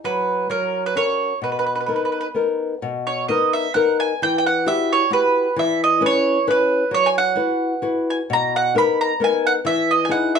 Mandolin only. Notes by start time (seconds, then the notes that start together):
0.05 B4
0.51 A#4
0.86 B4
0.97 C#5
1.44 B4
1.52 B4
1.59 B4
1.66 B4
1.75 B4
1.81 B4
1.86 B4
1.96 B4
2.05 B4
2.12 B4
2.21 B4
3.07 C#5
3.28 D#5
3.53 E5
3.74 F#5
4.00 G#5
4.23 G5
4.38 G5
4.46 F#5
4.68 E5
4.93 C#5
5.13 B4
5.59 E5
5.84 D#5
6.06 C#5
6.51 B4
6.94 C#5
7.06 G#5
7.18 F#5
8.10 G#5
8.33 A#5
8.56 F#5
8.78 B5
9.01 A#5
9.24 G#5
9.47 F#5
9.67 E5
9.91 D#5
10.05 G#5
10.11 F#5
10.35 E5